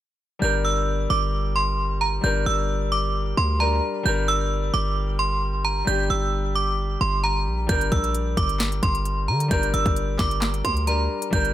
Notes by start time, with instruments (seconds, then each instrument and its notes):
0.39 808-style bass G1, grand piano G3 D4, synth bell G6
0.44 grand piano A#4
0.65 synth bell E6
1.10 808-style bass G1, synth bell D6
1.56 synth bell C6
2.01 synth bell A#5
2.21 808-style bass G1, grand piano G3 D4, synth bell G6
2.26 grand piano A#4
2.46 808-style bass G1, synth bell E6
2.92 synth bell D6
3.37 808-style bass D2, synth bell C6
3.59 grand piano G3 D4 A#4, synth bell A#5
4.03 808-style bass G1, grand piano G3 D4, synth bell G6
4.08 grand piano A#4
4.28 synth bell E6
4.74 808-style bass G1, synth bell D6
5.19 synth bell C6
5.65 synth bell A#5
5.85 808-style bass G1, grand piano G3 D4, synth bell G6
5.89 grand piano G4
6.10 808-style bass G1, synth bell E6
6.55 synth bell D6
7.01 808-style bass G1, synth bell C6
7.24 synth bell A#5
7.46 808-style bass A#1
7.67 808-style bass G1, grand piano G3 D4, synth bell G6, kick, closed hi-hat
7.71 grand piano A#4
7.81 closed hi-hat
7.92 808-style bass A#1, synth bell E6, kick, closed hi-hat
8.04 closed hi-hat
8.15 closed hi-hat
8.37 808-style bass G1, synth bell D6, kick, closed hi-hat
8.49 closed hi-hat
8.60 snare, clap, closed hi-hat
8.72 closed hi-hat
8.83 808-style bass G1, synth bell C6, kick, closed hi-hat
8.95 closed hi-hat
9.05 closed hi-hat
9.28 808-style bass D3, synth bell A#5
9.40 closed hi-hat
9.48 808-style bass G1, grand piano G3 D4, synth bell G6, kick, closed hi-hat
9.53 grand piano A#4
9.63 closed hi-hat
9.74 808-style bass G1, synth bell E6, closed hi-hat
9.86 808-style bass G1, kick, closed hi-hat
9.96 closed hi-hat
10.19 808-style bass G1, synth bell D6, kick, snare, clap, closed hi-hat
10.31 closed hi-hat
10.42 snare, clap, closed hi-hat
10.54 closed hi-hat
10.65 808-style bass D2, synth bell C6, kick, closed hi-hat
10.77 closed hi-hat
10.86 grand piano G3 D4 A#4, synth bell A#5, closed hi-hat
11.22 closed hi-hat
11.30 808-style bass G1, grand piano G3 D4, synth bell G6, kick, closed hi-hat
11.35 grand piano A#4
11.45 closed hi-hat